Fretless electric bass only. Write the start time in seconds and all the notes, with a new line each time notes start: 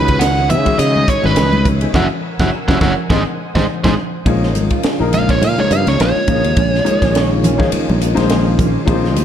Already playing: C#2
0.51 C#3
0.79 C#3
1.08 muted fretless electric bass stroke
1.25 G#1
1.38 C#2
1.94 F#1
2.40 F#1
2.69 F#1
2.81 F#1
3.10 G#1
3.55 G#1
3.85 G#1
4.26 A#1
4.54 G#1
4.84 muted fretless electric bass stroke
5.00 A#1
5.42 A#2
5.71 G2
5.87 C#2
6.00 A#1
6.28 A#1
6.45 D#2
6.57 A#1
6.87 muted fretless electric bass stroke
7.02 A#1
7.73 muted fretless electric bass stroke
7.90 A#1
8.18 A#1
8.88 A#1
9.16 D#2